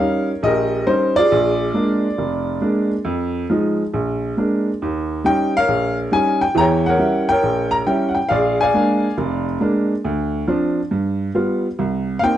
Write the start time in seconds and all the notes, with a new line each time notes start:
Already playing: A#4 C#5 F5
0.00 G3 C#4 D#4
0.43 A#1 G4 A#4 D#5
0.87 G3 C#4 D#4 C5
1.16 F4 G#4 D5
1.32 A#1
1.74 G#3 A#3 D4
2.18 F1
2.61 G#3 A#3 D4
3.05 F2
3.50 F3 G#3 D#4
3.94 A#1
4.37 G#3 A#3 D4
4.82 D#2
5.24 G3 C#4 D#4 G5
5.57 A#4 C#5 F5
5.68 A#1
6.12 G3 C#4 D#4 G#5
6.41 G5
6.55 E2 E3 A#5
6.60 C#5 G5
6.86 A#4 C#5 F#5
6.99 G3 C#4 E4
7.29 A#4 C#5 G5
7.43 A#1
7.71 A#5
7.87 G3 C#4 E4 G5
8.09 F#5
8.15 G5
8.29 A#1 G#4 D5 F5
8.61 D5 F5 G#5
8.74 G#3 A#3 D4
9.18 F1
9.60 G#3 A#3 D4
10.05 D2
10.47 F3 C4 D4
10.91 G2
11.35 G3 B3 F4
11.79 C2
12.19 A#3 C4 D#4 F5
12.24 G5